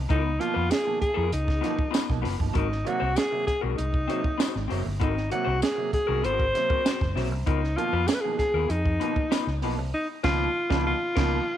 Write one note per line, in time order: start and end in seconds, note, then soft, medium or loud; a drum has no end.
0.09 0.37 C#2 loud
0.09 0.30 B3 medium
0.09 0.41 D#4 medium
0.09 0.24 F4 medium
0.09 0.23 A#4 loud
0.09 kick loud
0.09 closed hi-hat medium
0.25 muted clean electric guitar stroke soft
0.39 0.52 B2 medium
0.39 0.52 D#3 medium
0.39 0.53 F3 medium
0.39 0.53 A#3 loud
0.39 0.72 F4 loud
0.39 muted clean electric guitar stroke soft
0.39 closed hi-hat medium
0.54 0.70 F2 medium
0.54 0.66 B3 soft
0.54 0.66 F4 soft
0.54 0.66 B4 medium
0.70 1.01 G#4 loud
0.70 muted clean electric guitar stroke soft
0.70 snare loud
0.70 closed hi-hat loud
0.70 tambourine medium
0.84 0.99 B2 medium
0.84 0.99 D#3 medium
0.84 0.99 F3 medium
0.84 0.99 A#3 medium
0.84 muted clean electric guitar stroke soft
1.01 1.30 G#4 medium
1.01 muted fingered electric bass stroke soft
1.01 kick medium
1.01 closed hi-hat medium
1.14 1.31 F2 medium
1.14 1.29 B3 medium
1.14 1.30 F4 medium
1.14 1.31 A#4 medium
1.30 1.60 C#2 medium
1.30 2.21 D#4 medium
1.30 muted clean electric guitar stroke soft
1.30 closed hi-hat medium
1.48 kick medium
1.48 snare soft
1.61 1.76 B2 medium
1.61 1.76 D#3 medium
1.61 1.76 F3 medium
1.61 1.76 A#3 medium
1.61 1.73 B3 medium
1.61 1.73 F4 medium
1.61 1.74 B4 medium
1.61 snare soft
1.61 closed hi-hat medium
1.76 1.85 F3 soft
1.76 1.85 A#3 soft
1.76 muted clean electric guitar stroke soft
1.76 kick medium
1.91 2.06 B3 medium
1.91 2.06 F4 medium
1.91 2.06 B4 medium
1.91 snare loud
1.91 closed hi-hat medium
1.91 tambourine medium
2.07 2.23 B1 loud
2.07 2.22 B2 medium
2.07 2.22 D#3 medium
2.07 2.22 F3 medium
2.07 2.22 A#3 medium
2.07 muted clean electric guitar stroke medium
2.07 kick medium
2.07 snare soft
2.22 2.38 F#1 medium
2.22 2.34 B3 medium
2.22 2.35 F4 medium
2.22 2.35 B4 medium
2.22 open hi-hat medium
2.26 snare soft
2.38 2.54 G1 medium
2.38 2.53 B2 medium
2.38 2.53 D#3 medium
2.38 2.53 F3 medium
2.38 2.53 A#3 medium
2.38 muted clean electric guitar stroke medium
2.38 kick medium
2.54 2.83 G#1 loud
2.54 2.68 G#2 medium
2.54 2.68 C4 medium
2.54 2.89 D#4 medium
2.54 2.69 F#4 medium
2.54 2.68 A#4 medium
2.54 kick loud
2.54 closed hi-hat medium
2.69 muted clean electric guitar stroke soft
2.69 snare soft
2.85 2.98 C3 loud
2.85 2.99 F#3 medium
2.85 2.99 A#3 loud
2.85 3.18 F#4 loud
2.85 muted clean electric guitar stroke soft
2.85 closed hi-hat medium
3.00 3.15 C2 medium
3.00 3.08 F#3 soft
3.00 3.08 A#3 soft
3.00 3.12 C4 medium
3.00 3.12 F#4 medium
3.00 3.11 C5 medium
3.15 3.46 G#4 loud
3.15 muted clean electric guitar stroke soft
3.15 snare loud
3.15 closed hi-hat medium
3.15 tambourine medium
3.31 3.44 C3 medium
3.31 3.45 F#3 medium
3.31 3.45 A#3 medium
3.31 muted clean electric guitar stroke soft
3.47 3.61 G#4 medium
3.47 muted fingered electric bass stroke soft
3.47 kick medium
3.47 snare soft
3.47 closed hi-hat medium
3.61 3.77 B1 medium
3.61 3.75 G#2 medium
3.61 3.76 C4 medium
3.61 3.76 F#4 medium
3.61 3.76 A#4 medium
3.77 4.06 C2 medium
3.77 3.91 G#2 medium
3.77 4.66 D#4 medium
3.77 muted clean electric guitar stroke soft
3.77 closed hi-hat medium
3.94 kick medium
4.08 4.21 C3 medium
4.08 4.22 F#3 medium
4.08 4.21 A#3 medium
4.08 4.19 C4 medium
4.08 4.20 F#4 medium
4.08 4.20 C5 medium
4.08 closed hi-hat medium
4.23 4.31 F#3 soft
4.23 4.31 A#3 soft
4.23 muted clean electric guitar stroke soft
4.23 kick medium
4.38 4.46 F#3 soft
4.38 4.46 A#3 soft
4.38 4.59 C4 medium
4.38 4.54 F#4 medium
4.38 4.53 C5 medium
4.38 snare loud
4.38 closed hi-hat medium
4.38 tambourine loud
4.53 4.69 G#1 medium
4.53 4.68 G#2 medium
4.53 muted clean electric guitar stroke medium
4.53 snare soft
4.68 4.85 F#1 medium
4.68 4.83 C3 medium
4.68 4.83 F#3 medium
4.68 4.83 A#3 medium
4.68 4.80 C4 medium
4.68 4.81 F#4 medium
4.68 4.81 C5 medium
4.68 open hi-hat medium
4.85 5.01 G1 medium
4.85 muted clean electric guitar stroke soft
5.00 5.29 G#1 loud
5.00 5.14 G#2 medium
5.00 5.21 C4 medium
5.00 5.31 D#4 medium
5.00 5.15 F#4 medium
5.00 5.14 A#4 medium
5.00 kick loud
5.00 closed hi-hat medium
5.15 muted clean electric guitar stroke medium
5.15 snare soft
5.30 5.44 C3 medium
5.30 5.44 F#3 medium
5.30 5.45 A#3 medium
5.30 5.60 F#4 medium
5.30 muted clean electric guitar stroke soft
5.30 closed hi-hat medium
5.45 5.61 C2 medium
5.45 5.54 F#3 soft
5.45 5.54 A#3 soft
5.45 5.58 C4 medium
5.45 5.58 F#4 medium
5.45 5.57 C5 medium
5.60 5.91 G#4 medium
5.60 muted clean electric guitar stroke soft
5.60 snare loud
5.60 closed hi-hat medium
5.60 tambourine medium
5.76 5.90 C3 medium
5.76 5.90 F#3 medium
5.76 5.90 A#3 medium
5.76 muted clean electric guitar stroke soft
5.93 6.26 G#4 medium
5.93 muted fingered electric bass stroke medium
5.93 kick medium
5.93 closed hi-hat medium
6.07 6.23 C2 medium
6.07 6.21 G#2 medium
6.07 6.21 C4 medium
6.07 6.22 F#4 medium
6.07 6.22 A#4 medium
6.22 6.51 G#1 loud
6.22 6.36 G#2 medium
6.22 6.43 C4 medium
6.22 6.44 F#4 loud
6.22 6.45 A#4 loud
6.22 7.17 C5 loud
6.22 closed hi-hat medium
6.40 kick medium
6.54 6.67 C3 medium
6.54 6.67 F#3 medium
6.54 6.67 A#3 medium
6.54 muted clean electric guitar stroke soft
6.54 snare soft
6.54 closed hi-hat medium
6.69 6.77 F#3 soft
6.69 6.77 A#3 soft
6.69 6.82 C4 soft
6.69 6.81 F#4 soft
6.69 6.81 A#4 medium
6.69 kick medium
6.85 6.92 F#3 soft
6.85 6.92 A#3 soft
6.85 6.99 C4 medium
6.85 7.00 F#4 medium
6.85 7.00 C5 medium
6.85 snare loud
6.85 closed hi-hat medium
6.85 tambourine loud
7.01 7.15 F#1 loud
7.01 7.13 G#2 medium
7.01 muted clean electric guitar stroke soft
7.01 kick loud
7.01 snare soft
7.15 7.31 B1 loud
7.15 7.28 C3 medium
7.15 7.29 F#3 medium
7.15 7.29 A#3 medium
7.15 7.27 C4 medium
7.15 7.27 F#4 medium
7.15 7.28 C5 medium
7.15 snare soft
7.15 open hi-hat medium
7.31 7.45 C2 medium
7.31 muted clean electric guitar stroke soft
7.46 7.75 C#2 loud
7.46 7.61 B3 medium
7.46 7.78 D#4 medium
7.46 7.61 F4 medium
7.46 7.61 A#4 medium
7.46 kick loud
7.46 closed hi-hat loud
7.62 muted clean electric guitar stroke soft
7.62 snare soft
7.76 7.90 B2 medium
7.76 7.90 D#3 medium
7.76 7.90 F3 medium
7.76 7.90 A#3 loud
7.76 8.09 F4 loud
7.76 muted clean electric guitar stroke soft
7.76 closed hi-hat medium
7.93 8.07 F2 medium
7.93 8.00 F3 soft
7.93 8.00 A#3 soft
7.93 8.05 B3 medium
7.93 8.04 F4 medium
7.93 8.04 B4 medium
8.07 8.16 G#4 loud
8.07 muted clean electric guitar stroke soft
8.07 snare loud
8.07 closed hi-hat medium
8.07 tambourine medium
8.14 8.23 B4 medium
8.21 8.37 B2 medium
8.21 8.37 D#3 medium
8.21 8.37 F3 medium
8.21 8.37 A#3 medium
8.21 8.38 G#4 loud
8.21 muted clean electric guitar stroke soft
8.38 8.72 G#4 loud
8.38 muted fingered electric bass stroke soft
8.38 kick medium
8.38 snare soft
8.38 closed hi-hat medium
8.54 8.68 D#2 medium
8.54 8.69 B3 medium
8.54 8.69 F4 medium
8.54 8.69 A#4 medium
8.70 8.98 F2 loud
8.70 9.63 D#4 medium
8.70 muted clean electric guitar stroke soft
8.70 closed hi-hat medium
8.86 kick medium
9.00 9.14 B2 medium
9.00 9.14 D#3 medium
9.00 9.14 F3 medium
9.00 9.14 A#3 medium
9.00 9.12 B3 medium
9.00 9.12 F4 medium
9.00 9.13 B4 medium
9.00 closed hi-hat medium
9.16 9.23 F3 soft
9.16 9.23 A#3 soft
9.16 muted clean electric guitar stroke medium
9.16 kick medium
9.31 9.38 F3 soft
9.31 9.38 A#3 soft
9.31 9.45 B3 medium
9.31 9.46 F4 medium
9.31 9.46 B4 medium
9.31 snare loud
9.31 closed hi-hat medium
9.31 tambourine medium
9.47 9.63 C#2 loud
9.47 muted clean electric guitar stroke medium
9.47 snare soft
9.62 9.78 B1 medium
9.62 9.75 B2 medium
9.62 9.75 D#3 medium
9.62 9.75 F3 medium
9.62 9.75 A#3 medium
9.62 9.74 B3 medium
9.62 9.74 F4 medium
9.62 9.75 B4 medium
9.62 open hi-hat medium
9.78 9.92 C2 medium
9.78 muted clean electric guitar stroke soft
9.94 10.08 D#4 medium
10.23 10.46 C#2 loud
10.23 10.45 B2 loud
10.23 10.45 D#3 medium
10.23 10.45 F3 medium
10.23 10.45 A#3 loud
10.23 10.46 B3 loud
10.23 10.82 F4 loud
10.23 10.46 F4 loud
10.23 10.45 B4 loud
10.23 kick loud
10.23 snare loud
10.23 crash medium
10.70 10.92 C#2 loud
10.70 10.91 B2 loud
10.70 10.91 D#3 medium
10.70 10.91 F3 loud
10.70 10.91 A#3 loud
10.70 10.92 B3 loud
10.70 10.92 F4 medium
10.70 10.91 B4 medium
10.70 kick loud
10.70 snare loud
10.87 11.57 F4 loud
11.16 11.38 C#2 loud
11.16 11.38 B2 loud
11.16 11.38 D#3 loud
11.16 11.38 F3 loud
11.16 11.38 A#3 loud
11.16 11.38 B3 medium
11.16 11.38 F4 loud
11.16 11.37 A#4 loud
11.16 kick loud
11.16 snare loud
11.16 crash medium